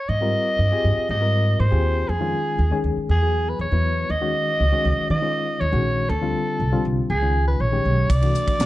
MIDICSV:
0, 0, Header, 1, 6, 480
1, 0, Start_track
1, 0, Tempo, 500835
1, 83, Time_signature, 4, 2, 24, 8
1, 8298, End_track
2, 0, Start_track
2, 0, Title_t, "Soprano saxophone"
2, 0, Program_c, 0, 64
2, 0, Note_on_c, 0, 73, 85
2, 84, Note_on_c, 0, 75, 106
2, 99, Note_off_c, 0, 73, 0
2, 1044, Note_off_c, 0, 75, 0
2, 1059, Note_on_c, 0, 75, 101
2, 1533, Note_on_c, 0, 72, 82
2, 1547, Note_off_c, 0, 75, 0
2, 2009, Note_on_c, 0, 68, 76
2, 2023, Note_off_c, 0, 72, 0
2, 2726, Note_off_c, 0, 68, 0
2, 2981, Note_on_c, 0, 68, 89
2, 3346, Note_on_c, 0, 71, 71
2, 3360, Note_off_c, 0, 68, 0
2, 3453, Note_off_c, 0, 71, 0
2, 3459, Note_on_c, 0, 73, 92
2, 3933, Note_on_c, 0, 75, 115
2, 3948, Note_off_c, 0, 73, 0
2, 4887, Note_off_c, 0, 75, 0
2, 4895, Note_on_c, 0, 75, 107
2, 5368, Note_on_c, 0, 73, 88
2, 5382, Note_off_c, 0, 75, 0
2, 5841, Note_on_c, 0, 69, 82
2, 5855, Note_off_c, 0, 73, 0
2, 6561, Note_off_c, 0, 69, 0
2, 6804, Note_on_c, 0, 68, 95
2, 7139, Note_off_c, 0, 68, 0
2, 7166, Note_on_c, 0, 71, 77
2, 7288, Note_on_c, 0, 73, 87
2, 7302, Note_off_c, 0, 71, 0
2, 7761, Note_on_c, 0, 74, 103
2, 7775, Note_off_c, 0, 73, 0
2, 8298, Note_off_c, 0, 74, 0
2, 8298, End_track
3, 0, Start_track
3, 0, Title_t, "Reed electric piano"
3, 0, Program_c, 1, 4
3, 201, Note_on_c, 1, 55, 76
3, 205, Note_on_c, 1, 60, 64
3, 210, Note_on_c, 1, 65, 68
3, 212, Note_on_c, 1, 70, 76
3, 624, Note_off_c, 1, 55, 0
3, 626, Note_off_c, 1, 60, 0
3, 629, Note_off_c, 1, 65, 0
3, 629, Note_off_c, 1, 70, 0
3, 686, Note_on_c, 1, 60, 63
3, 686, Note_on_c, 1, 67, 74
3, 691, Note_on_c, 1, 65, 69
3, 695, Note_on_c, 1, 68, 79
3, 1106, Note_off_c, 1, 60, 0
3, 1107, Note_off_c, 1, 67, 0
3, 1109, Note_off_c, 1, 65, 0
3, 1111, Note_off_c, 1, 68, 0
3, 1157, Note_on_c, 1, 55, 63
3, 1159, Note_on_c, 1, 60, 56
3, 1163, Note_on_c, 1, 65, 53
3, 1168, Note_on_c, 1, 70, 70
3, 1582, Note_off_c, 1, 55, 0
3, 1583, Note_off_c, 1, 60, 0
3, 1585, Note_off_c, 1, 65, 0
3, 1588, Note_off_c, 1, 70, 0
3, 1640, Note_on_c, 1, 67, 71
3, 1645, Note_on_c, 1, 60, 65
3, 1646, Note_on_c, 1, 65, 70
3, 1649, Note_on_c, 1, 68, 79
3, 2001, Note_off_c, 1, 67, 0
3, 2003, Note_off_c, 1, 60, 0
3, 2004, Note_off_c, 1, 65, 0
3, 2005, Note_off_c, 1, 68, 0
3, 2110, Note_on_c, 1, 51, 74
3, 2116, Note_on_c, 1, 56, 68
3, 2117, Note_on_c, 1, 61, 63
3, 2120, Note_on_c, 1, 65, 76
3, 2538, Note_off_c, 1, 51, 0
3, 2541, Note_off_c, 1, 56, 0
3, 2541, Note_off_c, 1, 61, 0
3, 2543, Note_off_c, 1, 65, 0
3, 2599, Note_on_c, 1, 51, 79
3, 2602, Note_on_c, 1, 56, 73
3, 2605, Note_on_c, 1, 61, 70
3, 2611, Note_on_c, 1, 68, 83
3, 2960, Note_off_c, 1, 51, 0
3, 2961, Note_off_c, 1, 56, 0
3, 2963, Note_off_c, 1, 61, 0
3, 2966, Note_off_c, 1, 68, 0
3, 3083, Note_on_c, 1, 54, 58
3, 3087, Note_on_c, 1, 59, 55
3, 3089, Note_on_c, 1, 68, 64
3, 3090, Note_on_c, 1, 64, 56
3, 3504, Note_off_c, 1, 54, 0
3, 3506, Note_off_c, 1, 59, 0
3, 3507, Note_off_c, 1, 68, 0
3, 3508, Note_off_c, 1, 64, 0
3, 3564, Note_on_c, 1, 54, 67
3, 3568, Note_on_c, 1, 59, 58
3, 3572, Note_on_c, 1, 64, 56
3, 3572, Note_on_c, 1, 71, 70
3, 3922, Note_off_c, 1, 54, 0
3, 3924, Note_off_c, 1, 59, 0
3, 3926, Note_off_c, 1, 64, 0
3, 3926, Note_off_c, 1, 71, 0
3, 4035, Note_on_c, 1, 51, 75
3, 4041, Note_on_c, 1, 56, 66
3, 4043, Note_on_c, 1, 61, 68
3, 4043, Note_on_c, 1, 66, 84
3, 4460, Note_off_c, 1, 51, 0
3, 4463, Note_off_c, 1, 56, 0
3, 4464, Note_off_c, 1, 61, 0
3, 4464, Note_off_c, 1, 66, 0
3, 4523, Note_on_c, 1, 51, 71
3, 4527, Note_on_c, 1, 56, 72
3, 4529, Note_on_c, 1, 61, 70
3, 4531, Note_on_c, 1, 66, 86
3, 4943, Note_off_c, 1, 51, 0
3, 4945, Note_off_c, 1, 56, 0
3, 4947, Note_off_c, 1, 61, 0
3, 4948, Note_off_c, 1, 66, 0
3, 4996, Note_on_c, 1, 51, 64
3, 4999, Note_on_c, 1, 56, 59
3, 5002, Note_on_c, 1, 61, 60
3, 5004, Note_on_c, 1, 65, 69
3, 5420, Note_off_c, 1, 51, 0
3, 5421, Note_off_c, 1, 56, 0
3, 5423, Note_off_c, 1, 61, 0
3, 5424, Note_off_c, 1, 65, 0
3, 5480, Note_on_c, 1, 51, 76
3, 5480, Note_on_c, 1, 56, 67
3, 5486, Note_on_c, 1, 61, 68
3, 5491, Note_on_c, 1, 66, 89
3, 5839, Note_off_c, 1, 51, 0
3, 5839, Note_off_c, 1, 56, 0
3, 5842, Note_off_c, 1, 61, 0
3, 5845, Note_off_c, 1, 66, 0
3, 5956, Note_on_c, 1, 50, 75
3, 5960, Note_on_c, 1, 55, 66
3, 5965, Note_on_c, 1, 60, 65
3, 5966, Note_on_c, 1, 65, 79
3, 6380, Note_off_c, 1, 50, 0
3, 6382, Note_off_c, 1, 55, 0
3, 6384, Note_off_c, 1, 60, 0
3, 6385, Note_off_c, 1, 65, 0
3, 6439, Note_on_c, 1, 55, 73
3, 6441, Note_on_c, 1, 50, 73
3, 6446, Note_on_c, 1, 60, 72
3, 6448, Note_on_c, 1, 65, 87
3, 6799, Note_off_c, 1, 50, 0
3, 6799, Note_off_c, 1, 55, 0
3, 6802, Note_off_c, 1, 60, 0
3, 6803, Note_off_c, 1, 65, 0
3, 6913, Note_on_c, 1, 51, 58
3, 6916, Note_on_c, 1, 56, 55
3, 6924, Note_on_c, 1, 61, 55
3, 6927, Note_on_c, 1, 65, 63
3, 7338, Note_off_c, 1, 51, 0
3, 7340, Note_off_c, 1, 56, 0
3, 7344, Note_off_c, 1, 61, 0
3, 7345, Note_off_c, 1, 65, 0
3, 7396, Note_on_c, 1, 51, 61
3, 7401, Note_on_c, 1, 56, 58
3, 7405, Note_on_c, 1, 61, 59
3, 7406, Note_on_c, 1, 67, 67
3, 7757, Note_off_c, 1, 51, 0
3, 7759, Note_off_c, 1, 56, 0
3, 7762, Note_off_c, 1, 61, 0
3, 7762, Note_off_c, 1, 67, 0
3, 7877, Note_on_c, 1, 52, 74
3, 7882, Note_on_c, 1, 57, 66
3, 7889, Note_on_c, 1, 62, 61
3, 7891, Note_on_c, 1, 66, 80
3, 8298, Note_off_c, 1, 52, 0
3, 8298, Note_off_c, 1, 57, 0
3, 8298, Note_off_c, 1, 62, 0
3, 8298, Note_off_c, 1, 66, 0
3, 8298, End_track
4, 0, Start_track
4, 0, Title_t, "Upright bass"
4, 0, Program_c, 2, 32
4, 84, Note_on_c, 2, 44, 83
4, 302, Note_off_c, 2, 44, 0
4, 566, Note_on_c, 2, 43, 75
4, 676, Note_off_c, 2, 43, 0
4, 809, Note_on_c, 2, 43, 77
4, 917, Note_off_c, 2, 43, 0
4, 1046, Note_on_c, 2, 44, 88
4, 1487, Note_off_c, 2, 44, 0
4, 1531, Note_on_c, 2, 44, 86
4, 1639, Note_off_c, 2, 44, 0
4, 1648, Note_on_c, 2, 39, 79
4, 1972, Note_off_c, 2, 39, 0
4, 2002, Note_on_c, 2, 41, 91
4, 2221, Note_off_c, 2, 41, 0
4, 2478, Note_on_c, 2, 39, 79
4, 2592, Note_off_c, 2, 39, 0
4, 2721, Note_on_c, 2, 39, 84
4, 2833, Note_off_c, 2, 39, 0
4, 2965, Note_on_c, 2, 40, 94
4, 3405, Note_off_c, 2, 40, 0
4, 3443, Note_on_c, 2, 40, 83
4, 3554, Note_off_c, 2, 40, 0
4, 3561, Note_on_c, 2, 40, 77
4, 3888, Note_off_c, 2, 40, 0
4, 3926, Note_on_c, 2, 39, 85
4, 4142, Note_off_c, 2, 39, 0
4, 4408, Note_on_c, 2, 37, 75
4, 4516, Note_off_c, 2, 37, 0
4, 4647, Note_on_c, 2, 37, 87
4, 4756, Note_off_c, 2, 37, 0
4, 4887, Note_on_c, 2, 51, 84
4, 5326, Note_off_c, 2, 51, 0
4, 5375, Note_on_c, 2, 39, 85
4, 5480, Note_off_c, 2, 39, 0
4, 5488, Note_on_c, 2, 34, 78
4, 5811, Note_off_c, 2, 34, 0
4, 5841, Note_on_c, 2, 38, 96
4, 6059, Note_off_c, 2, 38, 0
4, 6323, Note_on_c, 2, 36, 76
4, 6433, Note_off_c, 2, 36, 0
4, 6565, Note_on_c, 2, 36, 81
4, 6674, Note_off_c, 2, 36, 0
4, 6802, Note_on_c, 2, 37, 85
4, 7243, Note_off_c, 2, 37, 0
4, 7283, Note_on_c, 2, 34, 76
4, 7498, Note_off_c, 2, 34, 0
4, 7527, Note_on_c, 2, 35, 74
4, 7740, Note_off_c, 2, 35, 0
4, 7757, Note_on_c, 2, 36, 89
4, 7977, Note_off_c, 2, 36, 0
4, 8237, Note_on_c, 2, 35, 77
4, 8298, Note_off_c, 2, 35, 0
4, 8298, End_track
5, 0, Start_track
5, 0, Title_t, "Muted upright bass strokes"
5, 934, Note_on_c, 9, 29, 34
5, 1030, Note_off_c, 9, 29, 0
5, 2846, Note_on_c, 9, 29, 35
5, 2942, Note_off_c, 9, 29, 0
5, 4772, Note_on_c, 9, 29, 36
5, 4868, Note_off_c, 9, 29, 0
5, 6682, Note_on_c, 9, 29, 36
5, 6778, Note_off_c, 9, 29, 0
5, 8298, End_track
6, 0, Start_track
6, 0, Title_t, "Drums"
6, 7761, Note_on_c, 9, 36, 96
6, 7761, Note_on_c, 9, 44, 71
6, 7761, Note_on_c, 9, 51, 81
6, 7857, Note_off_c, 9, 36, 0
6, 7857, Note_off_c, 9, 44, 0
6, 7857, Note_off_c, 9, 51, 0
6, 7882, Note_on_c, 9, 51, 55
6, 7978, Note_off_c, 9, 51, 0
6, 8002, Note_on_c, 9, 44, 80
6, 8098, Note_off_c, 9, 44, 0
6, 8123, Note_on_c, 9, 51, 59
6, 8124, Note_on_c, 9, 36, 79
6, 8218, Note_off_c, 9, 51, 0
6, 8220, Note_off_c, 9, 36, 0
6, 8240, Note_on_c, 9, 44, 74
6, 8240, Note_on_c, 9, 51, 74
6, 8251, Note_on_c, 9, 38, 90
6, 8298, Note_off_c, 9, 38, 0
6, 8298, Note_off_c, 9, 44, 0
6, 8298, Note_off_c, 9, 51, 0
6, 8298, End_track
0, 0, End_of_file